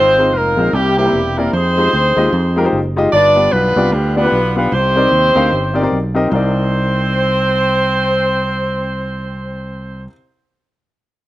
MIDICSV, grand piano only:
0, 0, Header, 1, 2, 480
1, 0, Start_track
1, 0, Key_signature, -3, "minor"
1, 0, Tempo, 398406
1, 1853, Time_signature, 4, 2, 24, 8
1, 13587, End_track
2, 0, Start_track
2, 0, Title_t, "Grand piano"
2, 0, Program_c, 0, 0
2, 0, Note_on_c, 0, 44, 60
2, 216, Note_on_c, 0, 56, 77
2, 227, Note_on_c, 0, 60, 74
2, 232, Note_on_c, 0, 63, 76
2, 234, Note_on_c, 0, 65, 71
2, 245, Note_on_c, 0, 72, 84
2, 348, Note_off_c, 0, 56, 0
2, 354, Note_off_c, 0, 60, 0
2, 356, Note_off_c, 0, 63, 0
2, 357, Note_off_c, 0, 65, 0
2, 363, Note_off_c, 0, 72, 0
2, 655, Note_off_c, 0, 44, 0
2, 686, Note_on_c, 0, 56, 77
2, 692, Note_on_c, 0, 60, 69
2, 702, Note_on_c, 0, 63, 73
2, 703, Note_on_c, 0, 65, 70
2, 708, Note_on_c, 0, 72, 85
2, 823, Note_off_c, 0, 56, 0
2, 826, Note_off_c, 0, 60, 0
2, 831, Note_off_c, 0, 63, 0
2, 832, Note_off_c, 0, 65, 0
2, 834, Note_off_c, 0, 72, 0
2, 897, Note_on_c, 0, 48, 66
2, 1164, Note_on_c, 0, 58, 71
2, 1165, Note_on_c, 0, 60, 68
2, 1176, Note_on_c, 0, 64, 63
2, 1179, Note_on_c, 0, 67, 65
2, 1184, Note_on_c, 0, 72, 81
2, 1237, Note_off_c, 0, 58, 0
2, 1237, Note_off_c, 0, 60, 0
2, 1243, Note_off_c, 0, 64, 0
2, 1244, Note_off_c, 0, 67, 0
2, 1247, Note_off_c, 0, 72, 0
2, 1263, Note_on_c, 0, 58, 72
2, 1266, Note_on_c, 0, 60, 64
2, 1274, Note_on_c, 0, 64, 65
2, 1283, Note_on_c, 0, 67, 62
2, 1286, Note_on_c, 0, 72, 76
2, 1416, Note_off_c, 0, 58, 0
2, 1418, Note_off_c, 0, 60, 0
2, 1422, Note_off_c, 0, 64, 0
2, 1426, Note_off_c, 0, 67, 0
2, 1428, Note_off_c, 0, 72, 0
2, 1613, Note_off_c, 0, 48, 0
2, 1651, Note_on_c, 0, 58, 74
2, 1656, Note_on_c, 0, 60, 68
2, 1660, Note_on_c, 0, 64, 67
2, 1661, Note_on_c, 0, 67, 74
2, 1670, Note_on_c, 0, 74, 85
2, 1786, Note_off_c, 0, 58, 0
2, 1788, Note_off_c, 0, 60, 0
2, 1790, Note_off_c, 0, 64, 0
2, 1791, Note_off_c, 0, 67, 0
2, 1795, Note_off_c, 0, 74, 0
2, 2134, Note_on_c, 0, 56, 78
2, 2139, Note_on_c, 0, 63, 76
2, 2146, Note_on_c, 0, 65, 73
2, 2153, Note_on_c, 0, 67, 75
2, 2156, Note_on_c, 0, 72, 86
2, 2267, Note_off_c, 0, 56, 0
2, 2269, Note_off_c, 0, 63, 0
2, 2273, Note_off_c, 0, 65, 0
2, 2276, Note_off_c, 0, 67, 0
2, 2278, Note_off_c, 0, 72, 0
2, 2605, Note_on_c, 0, 56, 98
2, 2609, Note_on_c, 0, 63, 86
2, 2622, Note_on_c, 0, 65, 84
2, 2622, Note_on_c, 0, 67, 84
2, 2628, Note_on_c, 0, 75, 96
2, 2742, Note_off_c, 0, 56, 0
2, 2745, Note_off_c, 0, 63, 0
2, 2751, Note_off_c, 0, 65, 0
2, 2751, Note_off_c, 0, 67, 0
2, 2754, Note_off_c, 0, 75, 0
2, 3086, Note_on_c, 0, 56, 91
2, 3090, Note_on_c, 0, 63, 81
2, 3100, Note_on_c, 0, 65, 76
2, 3101, Note_on_c, 0, 67, 81
2, 3106, Note_on_c, 0, 70, 98
2, 3158, Note_off_c, 0, 56, 0
2, 3160, Note_off_c, 0, 63, 0
2, 3165, Note_off_c, 0, 65, 0
2, 3165, Note_off_c, 0, 67, 0
2, 3168, Note_off_c, 0, 70, 0
2, 3186, Note_on_c, 0, 56, 84
2, 3188, Note_on_c, 0, 63, 83
2, 3193, Note_on_c, 0, 65, 77
2, 3199, Note_on_c, 0, 72, 94
2, 3202, Note_on_c, 0, 67, 77
2, 3338, Note_off_c, 0, 56, 0
2, 3339, Note_off_c, 0, 63, 0
2, 3341, Note_off_c, 0, 65, 0
2, 3344, Note_off_c, 0, 72, 0
2, 3346, Note_off_c, 0, 67, 0
2, 3570, Note_on_c, 0, 56, 91
2, 3573, Note_on_c, 0, 63, 83
2, 3580, Note_on_c, 0, 65, 87
2, 3582, Note_on_c, 0, 67, 80
2, 3595, Note_on_c, 0, 75, 104
2, 3705, Note_off_c, 0, 56, 0
2, 3707, Note_off_c, 0, 63, 0
2, 3710, Note_off_c, 0, 65, 0
2, 3711, Note_off_c, 0, 67, 0
2, 3718, Note_off_c, 0, 75, 0
2, 3785, Note_on_c, 0, 43, 64
2, 4047, Note_on_c, 0, 59, 83
2, 4050, Note_on_c, 0, 62, 75
2, 4057, Note_on_c, 0, 65, 70
2, 4057, Note_on_c, 0, 67, 74
2, 4066, Note_on_c, 0, 74, 88
2, 4183, Note_off_c, 0, 59, 0
2, 4185, Note_off_c, 0, 62, 0
2, 4188, Note_off_c, 0, 65, 0
2, 4189, Note_off_c, 0, 67, 0
2, 4193, Note_off_c, 0, 74, 0
2, 4497, Note_off_c, 0, 43, 0
2, 4527, Note_on_c, 0, 59, 81
2, 4537, Note_on_c, 0, 62, 69
2, 4539, Note_on_c, 0, 65, 77
2, 4544, Note_on_c, 0, 67, 75
2, 4545, Note_on_c, 0, 74, 91
2, 4664, Note_off_c, 0, 59, 0
2, 4668, Note_off_c, 0, 62, 0
2, 4670, Note_off_c, 0, 65, 0
2, 4672, Note_off_c, 0, 67, 0
2, 4673, Note_off_c, 0, 74, 0
2, 5004, Note_on_c, 0, 59, 74
2, 5008, Note_on_c, 0, 62, 67
2, 5017, Note_on_c, 0, 65, 67
2, 5020, Note_on_c, 0, 67, 69
2, 5025, Note_on_c, 0, 74, 87
2, 5077, Note_off_c, 0, 59, 0
2, 5079, Note_off_c, 0, 62, 0
2, 5083, Note_off_c, 0, 65, 0
2, 5085, Note_off_c, 0, 67, 0
2, 5087, Note_off_c, 0, 74, 0
2, 5105, Note_on_c, 0, 59, 73
2, 5112, Note_on_c, 0, 62, 63
2, 5116, Note_on_c, 0, 65, 66
2, 5125, Note_on_c, 0, 67, 67
2, 5126, Note_on_c, 0, 71, 78
2, 5258, Note_off_c, 0, 59, 0
2, 5261, Note_off_c, 0, 62, 0
2, 5263, Note_off_c, 0, 65, 0
2, 5267, Note_off_c, 0, 67, 0
2, 5268, Note_off_c, 0, 71, 0
2, 5491, Note_on_c, 0, 59, 79
2, 5502, Note_on_c, 0, 62, 72
2, 5502, Note_on_c, 0, 65, 74
2, 5509, Note_on_c, 0, 67, 72
2, 5516, Note_on_c, 0, 77, 83
2, 5626, Note_off_c, 0, 59, 0
2, 5631, Note_off_c, 0, 62, 0
2, 5631, Note_off_c, 0, 65, 0
2, 5635, Note_off_c, 0, 67, 0
2, 5638, Note_off_c, 0, 77, 0
2, 5702, Note_on_c, 0, 48, 65
2, 5968, Note_on_c, 0, 60, 84
2, 5976, Note_on_c, 0, 63, 72
2, 5983, Note_on_c, 0, 67, 71
2, 5984, Note_on_c, 0, 70, 73
2, 5992, Note_on_c, 0, 74, 87
2, 6105, Note_off_c, 0, 60, 0
2, 6109, Note_off_c, 0, 63, 0
2, 6112, Note_off_c, 0, 67, 0
2, 6112, Note_off_c, 0, 70, 0
2, 6116, Note_off_c, 0, 74, 0
2, 6416, Note_off_c, 0, 48, 0
2, 6448, Note_on_c, 0, 60, 86
2, 6449, Note_on_c, 0, 63, 83
2, 6453, Note_on_c, 0, 67, 86
2, 6461, Note_on_c, 0, 70, 88
2, 6465, Note_on_c, 0, 77, 96
2, 6585, Note_off_c, 0, 60, 0
2, 6585, Note_off_c, 0, 63, 0
2, 6587, Note_off_c, 0, 67, 0
2, 6591, Note_off_c, 0, 70, 0
2, 6593, Note_off_c, 0, 77, 0
2, 6913, Note_on_c, 0, 60, 83
2, 6917, Note_on_c, 0, 63, 78
2, 6924, Note_on_c, 0, 67, 73
2, 6927, Note_on_c, 0, 70, 78
2, 6934, Note_on_c, 0, 74, 96
2, 6992, Note_off_c, 0, 60, 0
2, 6994, Note_off_c, 0, 63, 0
2, 6997, Note_off_c, 0, 67, 0
2, 6999, Note_off_c, 0, 70, 0
2, 7002, Note_off_c, 0, 74, 0
2, 7014, Note_on_c, 0, 60, 81
2, 7019, Note_on_c, 0, 63, 72
2, 7023, Note_on_c, 0, 67, 72
2, 7027, Note_on_c, 0, 70, 72
2, 7030, Note_on_c, 0, 74, 96
2, 7172, Note_off_c, 0, 60, 0
2, 7175, Note_off_c, 0, 63, 0
2, 7177, Note_off_c, 0, 67, 0
2, 7179, Note_off_c, 0, 70, 0
2, 7180, Note_off_c, 0, 74, 0
2, 7405, Note_on_c, 0, 60, 85
2, 7407, Note_on_c, 0, 63, 78
2, 7412, Note_on_c, 0, 67, 80
2, 7419, Note_on_c, 0, 70, 82
2, 7425, Note_on_c, 0, 75, 98
2, 7543, Note_off_c, 0, 60, 0
2, 7544, Note_off_c, 0, 63, 0
2, 7547, Note_off_c, 0, 67, 0
2, 7550, Note_off_c, 0, 70, 0
2, 7554, Note_off_c, 0, 75, 0
2, 7565, Note_on_c, 0, 60, 73
2, 7594, Note_on_c, 0, 63, 72
2, 7607, Note_on_c, 0, 36, 72
2, 7620, Note_on_c, 0, 70, 71
2, 7654, Note_on_c, 0, 74, 86
2, 12080, Note_off_c, 0, 60, 0
2, 12109, Note_off_c, 0, 63, 0
2, 12122, Note_off_c, 0, 36, 0
2, 12135, Note_off_c, 0, 70, 0
2, 12169, Note_off_c, 0, 74, 0
2, 13587, End_track
0, 0, End_of_file